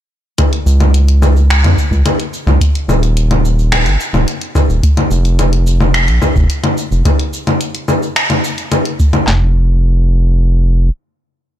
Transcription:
0.38 kick loud
0.38 closed hi-hat medium
0.38 low conga medium
0.38 cabasa soft
0.53 closed hi-hat soft
0.66 1.65 C#2 loud
0.66 cabasa medium
0.80 closed hi-hat soft
0.80 low conga medium
0.80 cabasa soft
0.94 closed hi-hat medium
0.94 cabasa soft
1.08 closed hi-hat soft
1.22 low conga medium
1.22 cabasa medium
1.36 cabasa soft
1.50 finger snap medium
1.50 closed hi-hat medium
1.50 cabasa soft
1.63 1.75 F2 medium
1.63 closed hi-hat soft
1.63 low conga medium
1.63 cabasa soft
1.77 kick medium
1.77 cabasa medium
1.91 2.03 C#2 medium
1.91 kick medium
1.91 cabasa soft
2.06 closed hi-hat medium
2.06 low conga medium
2.06 cabasa soft
2.20 closed hi-hat soft
2.33 cabasa medium
2.47 2.58 C#2 medium
2.47 low conga medium
2.47 cabasa soft
2.61 kick loud
2.61 closed hi-hat medium
2.61 cabasa soft
2.75 closed hi-hat soft
2.88 3.87 D#1 loud
2.88 low conga medium
2.88 cabasa medium
3.03 closed hi-hat soft
3.03 cabasa soft
3.17 closed hi-hat medium
3.17 cabasa soft
3.31 closed hi-hat soft
3.31 low conga medium
3.45 cabasa medium
3.59 cabasa soft
3.72 finger snap medium
3.72 closed hi-hat medium
3.72 low conga medium
3.72 cabasa soft
3.85 3.97 G1 medium
3.85 closed hi-hat soft
3.85 cabasa soft
4.00 cabasa medium
4.13 4.25 D#1 loud
4.13 low conga medium
4.13 cabasa soft
4.28 closed hi-hat medium
4.28 cabasa soft
4.41 closed hi-hat soft
4.55 kick loud
4.55 low conga medium
4.55 cabasa medium
4.69 4.81 D#1 medium
4.69 cabasa soft
4.83 kick loud
4.83 closed hi-hat medium
4.83 cabasa soft
4.97 closed hi-hat soft
4.97 low conga medium
5.11 6.10 F1 loud
5.11 cabasa medium
5.25 closed hi-hat soft
5.25 cabasa soft
5.39 closed hi-hat medium
5.39 low conga medium
5.39 cabasa soft
5.53 closed hi-hat soft
5.67 cabasa medium
5.81 low conga medium
5.81 cabasa soft
5.94 finger snap medium
5.94 closed hi-hat medium
5.94 cabasa soft
6.08 6.20 A#1 medium
6.08 closed hi-hat soft
6.08 cabasa soft
6.22 kick medium
6.22 low conga medium
6.22 cabasa medium
6.36 6.47 F1 medium
6.36 kick loud
6.36 cabasa soft
6.50 closed hi-hat medium
6.50 cabasa soft
6.64 closed hi-hat soft
6.64 low conga medium
6.78 cabasa medium
6.91 7.03 F1 medium
6.91 cabasa soft
7.05 kick loud
7.05 closed hi-hat medium
7.05 low conga medium
7.05 cabasa soft
7.19 closed hi-hat soft
7.33 cabasa medium
7.47 closed hi-hat soft
7.47 low conga medium
7.47 cabasa soft
7.61 closed hi-hat medium
7.61 cabasa soft
7.75 closed hi-hat soft
7.88 low conga medium
7.88 cabasa medium
8.03 cabasa soft
8.16 finger snap medium
8.16 closed hi-hat medium
8.16 cabasa soft
8.30 closed hi-hat soft
8.30 low conga medium
8.30 cabasa soft
8.44 cabasa medium
8.58 closed hi-hat soft
8.58 cabasa soft
8.72 closed hi-hat medium
8.72 low conga medium
8.72 cabasa soft
8.85 closed hi-hat soft
9.00 kick loud
9.00 cabasa medium
9.13 closed hi-hat soft
9.13 low conga medium
9.13 cabasa soft
9.27 10.90 F1 medium
9.27 snare loud
9.27 clap medium
9.27 floor tom loud

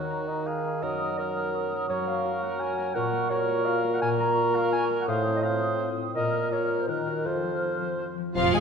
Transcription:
0.00 0.84 D#3 soft
0.00 0.85 D#3 medium
0.00 0.99 A#3 soft
0.00 0.28 D#4 soft
0.00 0.49 F#4 soft
0.00 1.17 F#4 soft
0.00 0.29 C#5 medium
0.00 0.79 A#5 soft
0.11 0.45 A#4 soft
0.27 0.63 D#4 soft
0.27 0.45 D#5 medium
0.45 0.84 G#4 soft
0.45 4.02 A#4 soft
0.45 0.83 F5 medium
0.64 1.90 D#4 soft
0.81 1.88 F#2 soft
0.81 2.94 F#3 medium
0.81 1.18 A#4 soft
0.81 1.20 D#5 medium
0.81 1.18 D#6 soft
1.00 1.35 A#3 soft
1.18 1.53 F#4 soft
1.18 1.72 A#4 medium
1.18 1.88 A#4 soft
1.18 1.88 D#6 soft
1.36 1.71 A#3 soft
1.54 2.24 F#4 soft
1.72 2.06 A#3 soft
1.89 2.96 F#2 medium
1.89 2.92 A#4 medium
1.89 2.06 C#5 medium
1.89 2.67 C#6 medium
2.07 2.41 A#3 soft
2.07 2.44 F5 medium
2.25 2.59 F#4 soft
2.42 2.77 A#3 soft
2.42 2.61 F#5 medium
2.60 3.29 F#4 soft
2.60 2.96 G#5 medium
2.78 3.12 A#3 soft
2.94 5.04 A#2 medium
2.94 4.01 A#2 medium
2.94 3.30 A#4 medium
2.94 3.32 F#5 medium
2.94 3.29 C#6 medium
3.13 3.47 A#3 soft
3.30 3.65 F#4 medium
3.30 4.00 A#4 medium
3.30 3.67 C#5 medium
3.30 4.00 C#6 medium
3.48 3.83 A#3 soft
3.65 4.03 F#4 medium
3.65 3.96 F5 medium
3.84 4.18 A#3 soft
3.94 4.01 F#5 medium
4.01 5.10 A#2 medium
4.01 5.06 A#4 medium
4.01 4.09 G#5 medium
4.01 5.06 C#6 medium
4.20 4.53 A#3 medium
4.20 4.57 A#5 medium
4.37 4.71 F4 medium
4.54 4.89 A#3 soft
4.54 4.72 F5 medium
4.72 5.42 F4 medium
4.72 4.84 G#5 medium
4.90 5.09 A#3 medium
5.01 5.08 F#5 medium
5.08 5.87 A2 medium
5.08 6.17 A2 medium
5.08 5.43 C5 medium
5.08 5.21 F5 medium
5.08 5.43 D#6 medium
5.26 5.60 C4 soft
5.36 5.45 D#5 medium
5.43 5.78 F4 medium
5.43 5.90 C5 medium
5.43 5.80 F5 medium
5.43 6.14 D#6 medium
5.61 5.95 C4 soft
5.79 6.50 F4 soft
5.97 6.17 C4 soft
6.15 6.89 A#2 medium
6.15 6.90 A#2 medium
6.15 6.49 A#4 medium
6.15 6.54 D#5 medium
6.15 6.51 F6 medium
6.33 6.68 A#3 soft
6.51 6.89 F4 soft
6.51 6.87 A#4 soft
6.51 6.82 C#5 medium
6.51 6.88 F6 medium
6.69 7.26 A#3 soft
6.80 6.89 C5 medium
6.88 7.27 D#3 soft
6.88 7.27 D#3 medium
6.88 7.28 A#4 soft
6.88 7.26 A#4 medium
6.88 7.25 F#6 soft
7.06 7.27 D#4 soft
7.06 7.27 F#4 soft
7.25 8.38 F2 soft
7.25 8.18 F3 soft
7.25 7.99 A4 medium
7.25 8.18 C5 soft
7.25 8.05 F6 soft
7.43 7.80 F3 soft
7.62 7.98 F4 soft
7.81 8.16 F3 soft
7.99 8.60 F4 soft
8.17 8.53 F3 soft
8.35 8.54 F1 medium
8.35 8.53 F2 medium
8.35 8.60 A#2 medium
8.35 8.53 F3 medium
8.35 8.54 F3 medium
8.35 8.53 F4 medium
8.35 8.54 F4 medium
8.35 8.53 F5 medium
8.53 8.60 G#1 medium
8.53 8.60 G#2 medium
8.53 8.60 F3 soft
8.53 8.60 G#3 medium
8.53 8.60 G#4 medium
8.53 8.60 G#5 medium

